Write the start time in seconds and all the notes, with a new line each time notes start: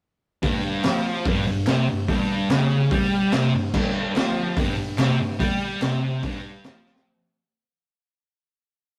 0.43 G2, kick, open hi-hat
0.83 F3, snare, clap, open hi-hat
1.25 G2, kick, open hi-hat
1.47 G2
1.67 C3, snare, clap, open hi-hat
1.88 G2
2.08 G2, kick, open hi-hat
2.50 C#3, snare, clap, open hi-hat
2.91 G3, kick, open hi-hat
3.32 C3, snare, clap, open hi-hat
3.54 G2
3.74 G2, kick, crash
4.15 F3, snare, clap, open hi-hat
4.57 G2, kick, open hi-hat
4.78 G2
4.98 C3, snare, clap, open hi-hat
5.19 G2
5.39 G3, kick, open hi-hat
5.82 C3, snare, clap, open hi-hat
6.23 G2, kick, open hi-hat
6.64 F3, snare, clap, open hi-hat
6.86 snare
6.96 snare